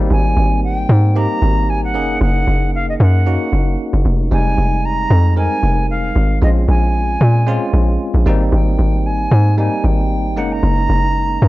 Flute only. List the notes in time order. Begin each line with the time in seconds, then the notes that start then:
0.11 G#5
0.64 G5
1.16 A#5
1.69 G#5
1.84 F#5
2.22 F#5
2.74 F5
2.89 D#5
3.01 F#5
4.32 G#5
4.85 A#5
5.37 G#5
5.90 F5
6.43 D#5
6.69 G#5
8.53 G5
9.06 G#5
9.59 G#5
9.85 G5
10.38 F#5
10.52 A#5